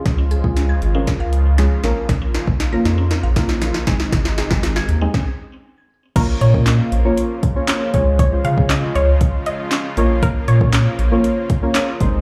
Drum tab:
CC |----------------|----------------|----------------|x---------------|
HH |x-x-x-x-x-x-x-x-|x-x-x-x-x-x-x-x-|x-x-x-x---------|x-x-x-x-x-x-x-x-|
CP |----------------|----------------|----------------|----x-------x---|
SD |o---o---o---o-o-|o-o-o-o-o-oooooo|oooooo--o-------|----o-------o---|
BD |o--o----o-------|o--o------o---o-|o--o----o-------|o--o------o---o-|

CC |----------------|----------------|
HH |x-x-x-x-x-x-x-x-|x-x-x-x-x-x-x-x-|
CP |----x-------x---|----x-------x---|
SD |----o-------o---|----o-------o---|
BD |o--o----o-------|o--o------o---o-|